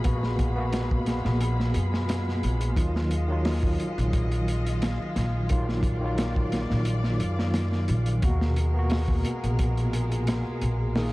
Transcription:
Already playing: A#1 G#3 F4 G#4 F5 B5
0.04 A#3 B3 F#4, kick, closed hi-hat
0.23 snare
0.39 kick, closed hi-hat
0.56 A#3 B3
0.60 F#4
0.72 snare, closed hi-hat
0.91 kick
1.06 snare, closed hi-hat
1.25 A#1, snare
1.41 closed hi-hat
1.60 snare
1.74 F#2, closed hi-hat
1.94 snare
2.09 snare, closed hi-hat
2.29 snare
2.43 A#1, closed hi-hat
2.61 closed hi-hat
2.76 D#2 D#3 F#3 F4 D#5, kick, closed hi-hat
2.96 snare
3.11 closed hi-hat
3.28 D#3 F#3
3.32 F4
3.45 snare, open hi-hat
3.63 kick
3.80 closed hi-hat
3.98 A#1, closed hi-hat
4.13 kick, closed hi-hat
4.31 closed hi-hat
4.48 closed hi-hat
4.66 closed hi-hat
4.82 snare, closed hi-hat
5.16 A#1, snare, closed hi-hat
5.49 D#3 F#3 F4 D5, kick, closed hi-hat
5.69 snare
5.83 kick, closed hi-hat
6.01 D#3 F#3
6.05 F4
6.18 snare, closed hi-hat
6.36 kick
6.52 snare, closed hi-hat
6.70 A#1, snare
6.85 closed hi-hat
7.04 snare
7.20 F#2, closed hi-hat
7.39 snare
7.54 snare, closed hi-hat
7.72 snare
7.88 A#1, closed hi-hat
8.06 closed hi-hat
8.22 D#2 B2 G#3 A#3 F#4 G#4 A#4, kick, closed hi-hat
8.41 snare
8.56 closed hi-hat
8.74 A#3 B3
8.79 F#4
8.90 snare, open hi-hat
9.08 kick
9.24 closed hi-hat
9.44 A#1, closed hi-hat
9.59 kick, closed hi-hat
9.77 closed hi-hat
9.93 closed hi-hat
10.12 closed hi-hat
10.27 snare, closed hi-hat
10.62 A#1, closed hi-hat
10.95 D#3 A#3 D#4 F4 G#4 A#4, snare, open hi-hat

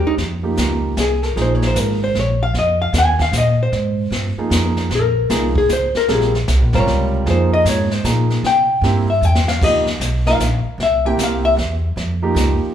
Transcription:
Already playing: G#3 C#4 G4 A#4
0.07 D#4
0.17 F2, brush sweep, snare
0.43 F3 A#3 D#4 G4
0.57 C#2, snare, hi-hat pedal
0.97 C2 G#4, snare, hi-hat pedal
1.23 A#4, snare
1.36 A#1 F3 A#3 D#4 G#4, brush sweep, snare
1.42 C5
1.55 C#5
1.62 snare
1.67 C5
1.75 G#1, snare, hi-hat pedal
1.80 A#4
2.04 C5
2.15 A#1, snare
2.20 C#5
2.43 F5
2.53 F2, brush sweep, snare
2.59 D#5
2.82 F5
2.93 D#2, snare, hi-hat pedal
2.98 G#5
3.19 F5, kick, snare
3.32 A#2, snare, hi-hat pedal
3.38 D#5
3.63 C5
3.72 G#2, brush sweep, snare
4.11 G2, snare
4.36 F3 A#3 D#4 G#4, muted upright bass stroke
4.50 F2, snare, hi-hat pedal
4.77 snare
4.90 A#1, brush sweep, snare
4.95 A#4
5.30 C2 F3 A#3 D#4 G#4, snare, hi-hat pedal
5.55 G#4, kick
5.69 C#2, snare, hi-hat pedal
5.73 C5
5.94 A#4, muted upright bass stroke, snare
6.08 A#1 G3 C4 F4 G#4 A#4, brush sweep, snare
6.21 snare
6.35 snare
6.48 C2, snare, hi-hat pedal
6.60 A#1
6.73 G#1 C3 G3 F4 A#4 C#5, kick, snare
6.86 C#2, snare
7.26 F2 F3 A#3 D#4 G#4, brush sweep, snare
7.30 C5
7.53 D#5
7.65 G#2, snare, hi-hat pedal
7.69 C#5
7.91 C5, snare
8.04 A#2 F3 A#3 D#4 G#4, snare, hi-hat pedal
8.30 snare
8.43 C3 G5, brush sweep, snare
8.81 G2 A#3 C4 E4 G4, snare
9.10 E5
9.21 E2 G5, hi-hat pedal
9.35 snare
9.48 F5, snare
9.61 C#2 F3 A#3 D#4 G4 D#5, brush sweep, kick, snare, crash
9.87 snare
10.00 B1, snare, hi-hat pedal
10.26 F3 A#3 D#4 A#4 F5, snare
10.38 A#1, snare, hi-hat pedal
10.64 muted upright bass stroke
10.78 C2, brush sweep, snare
10.83 E5
11.05 A#3 C4 E4 G4 G5
11.17 C2, snare, hi-hat pedal
11.23 F5
11.45 E5
11.57 E2, snare
11.96 F2, brush sweep, snare
12.22 F3 A#3 D#4 G4
12.35 C#2, snare, hi-hat pedal
12.60 muted upright bass stroke

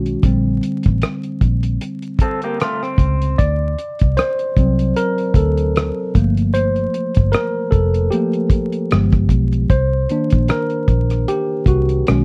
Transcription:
Already playing: B1 D#3 G#3 C#4 F#4
0.06 closed hi-hat
0.23 A#1 D3 G3 C4, kick, closed hi-hat
0.63 closed hi-hat
0.83 A1, kick, closed hi-hat
1.02 cross-stick, closed hi-hat
1.23 closed hi-hat
1.41 A#1, kick, closed hi-hat
1.63 closed hi-hat
1.81 closed hi-hat
2.03 closed hi-hat
2.19 C4 A4, kick, closed hi-hat
2.42 A#3 G4, closed hi-hat
2.60 A3 F4, cross-stick, closed hi-hat
2.83 C4, cross-stick
2.98 C#2, kick, closed hi-hat
3.22 closed hi-hat
3.38 D2 D5, kick, closed hi-hat
3.78 closed hi-hat
3.99 C2, kick, closed hi-hat
4.17 C5, cross-stick, closed hi-hat
4.39 closed hi-hat
4.57 C2 F#3 C4, kick, closed hi-hat
4.79 closed hi-hat
4.97 A#4, closed hi-hat
5.18 closed hi-hat
5.34 D2 A4, kick, closed hi-hat
5.58 closed hi-hat
5.76 cross-stick, closed hi-hat
6.15 G1 F3 A3 A#3, kick, closed hi-hat
6.37 closed hi-hat
6.54 C5, closed hi-hat
6.76 closed hi-hat
6.94 closed hi-hat
7.15 G1, kick, closed hi-hat
7.32 A#4, cross-stick, closed hi-hat
7.71 F1 A4, kick, closed hi-hat
7.94 closed hi-hat
8.11 F3 A3 A#3 G4, closed hi-hat
8.33 closed hi-hat
8.50 kick, closed hi-hat
8.73 closed hi-hat
8.91 G1 F3 G#3 B3, cross-stick, closed hi-hat
9.12 kick, cross-stick, closed hi-hat
9.29 B1, kick, closed hi-hat
9.53 closed hi-hat
9.70 C2 C5, kick, closed hi-hat
10.10 D#3 A#3 D4, closed hi-hat
10.30 A#1, kick, closed hi-hat
10.49 A#4, cross-stick, closed hi-hat
10.70 closed hi-hat
10.88 A#1, kick, closed hi-hat
11.10 cross-stick, closed hi-hat
11.28 G4, closed hi-hat
11.66 C2 F#4, kick, closed hi-hat
11.89 closed hi-hat
12.07 B1 D#3 G#3 C#4, cross-stick, closed hi-hat

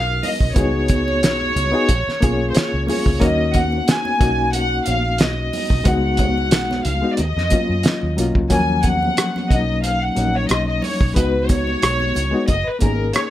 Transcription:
Already playing: B1 C#4 D#4 F#4 A#4 F5
0.23 D#5, open hi-hat, high conga, low conga
0.41 B1, kick
0.54 C#2 B3 D#4 F#4 G#4 C#5, kick, closed hi-hat, muted conga, low conga
0.88 kick, closed hi-hat, muted conga, high conga
1.08 high conga
1.23 B1, snare, closed hi-hat
1.41 high conga
1.56 C#2, closed hi-hat, muted conga, low conga
1.72 B3 D#4 F#4 G#4
1.89 A#1, kick, closed hi-hat, muted conga
2.08 muted fingered electric bass stroke, snare
2.20 B1 A#3 C#4 F4 G#4, kick, closed hi-hat, muted conga, high conga
2.50 C5
2.55 C#5, muted fingered electric bass stroke, snare, closed hi-hat
2.73 C#2
2.87 A#3 C#4 F4 G#4 C#5, open hi-hat, muted conga, high conga, low conga
3.06 C#2, kick
3.20 D#2 A#3 C#4 D#4 F#4 D#5, kick, closed hi-hat, muted conga, low conga
3.54 F#5, kick, closed hi-hat, muted conga, high conga
3.72 high conga
3.88 G#5, snare, closed hi-hat, muted conga
4.05 high conga
4.19 B1 A#3 C#4 D#4 F#4, kick, closed hi-hat, muted conga, low conga
4.53 F#5, closed hi-hat, muted conga
4.86 A#1 F5, closed hi-hat, muted conga, high conga
5.18 B1 D#5, snare, closed hi-hat, muted conga
5.53 open hi-hat, muted conga, high conga, low conga
5.70 B1, kick
5.84 C#2 G#3 B3 D#4 F#4 F#5, kick, closed hi-hat, muted conga, low conga
6.17 kick, closed hi-hat, muted conga, high conga
6.38 high conga
6.51 B1, snare, closed hi-hat
6.71 snare, high conga
6.85 C#2 F5, closed hi-hat, muted conga, low conga
7.01 G#3 B3 D#4 F#4
7.12 D5
7.17 D#2 D#5, closed hi-hat, muted conga
7.37 F2, snare
7.50 F#3 A#3 C#4 F4, kick, closed hi-hat, high conga
7.69 F#2
7.83 snare, closed hi-hat
8.03 D#2
8.17 B1 F#3 A#3 C#4 F4, closed hi-hat, muted conga, high conga, low conga
8.35 C#2, kick
8.50 D#2 F3 F#3 A#3 C#4 G#5, kick, closed hi-hat
8.83 F#5, kick, closed hi-hat, muted conga, high conga
9.03 high conga
9.17 cross-stick, closed hi-hat
9.36 cross-stick, high conga
9.49 B1 F#3 A#3 C#4 D4 D#5, kick, closed hi-hat, muted conga, low conga
9.59 D#4
9.84 F5, closed hi-hat, muted conga
10.02 F#5
10.15 A#1 F#3 A#3 C#4 D#4, closed hi-hat, high conga
10.35 C#5
10.49 B1 D#5, cross-stick, closed hi-hat, muted conga
10.67 D#5
10.82 C#5, open hi-hat, muted conga, low conga
11.01 B1, kick
11.14 C#2 G#3 B3 D#4 F#4 B4, kick, closed hi-hat
11.43 C5
11.48 C#5, kick, closed hi-hat, high conga
11.67 high conga
11.82 B1, cross-stick, closed hi-hat, muted conga
12.00 high conga
12.15 C#2, closed hi-hat, muted conga, low conga
12.31 G#3 B3 D#4 F#4
12.48 F#1 D#5, kick, closed hi-hat, muted conga
12.67 B4, muted fingered electric bass stroke
12.79 G#1 A#3 C#4 D#4 G#4 A#4, kick, closed hi-hat, muted conga, high conga
13.13 C#5, cross-stick, closed hi-hat

